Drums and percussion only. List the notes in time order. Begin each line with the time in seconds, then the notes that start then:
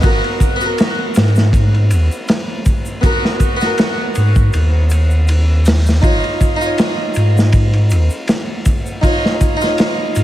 0.02 kick, ride, shaker
0.24 ride
0.40 kick, ride, shaker
0.61 shaker
0.78 snare, ride, shaker
1.15 snare, ride, shaker
1.35 snare, shaker
1.53 kick, ride, shaker
1.74 ride
1.90 ride, shaker
2.11 shaker
2.28 snare, ride, shaker
2.65 kick, ride, shaker
2.85 shaker
3.03 kick, ride, shaker
3.25 snare
3.40 kick, ride, shaker
3.61 snare, shaker
3.78 snare, ride, shaker
4.15 ride, shaker
4.35 kick, shaker
4.53 ride, shaker
4.90 ride, shaker
5.11 shaker
5.27 ride, shaker
5.65 snare, open hi-hat, shaker
5.86 snare, shaker
6.03 kick, ride, shaker
6.24 ride
6.41 kick, ride, shaker
6.62 shaker
6.78 snare, ride, shaker
7.14 ride, shaker
7.37 snare, shaker
7.52 kick, ride, shaker
7.73 ride
7.90 ride, shaker
8.10 shaker
8.28 snare, ride, shaker
8.65 kick, ride, shaker
8.86 shaker
9.03 kick, ride, shaker
9.26 snare
9.41 kick, ride, shaker
9.61 snare, shaker
9.78 snare, ride, shaker
10.15 ride, shaker